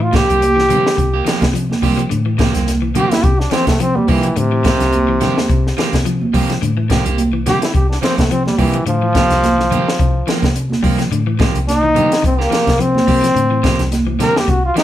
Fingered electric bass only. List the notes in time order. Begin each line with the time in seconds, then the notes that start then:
Already playing: A2
0.29 C2
0.70 C3
0.98 C2
1.42 C3
1.83 C3
2.11 A2
2.54 C2
2.95 C3
3.24 C2
3.67 C3
4.08 C3
4.37 A2
4.80 C2
5.21 C3
5.50 C2
5.93 C3
6.34 C3
6.62 A2
7.06 C2
7.47 C3
7.75 C2
8.18 C3
8.59 C3
8.86 A2
9.30 C2
9.71 C3
10.00 C2
10.43 C3
10.84 C3
11.11 A2
11.55 C2
11.96 C3
12.24 C2
12.67 C3
13.08 C3
13.35 A2
13.79 C2
14.20 C3
14.48 C2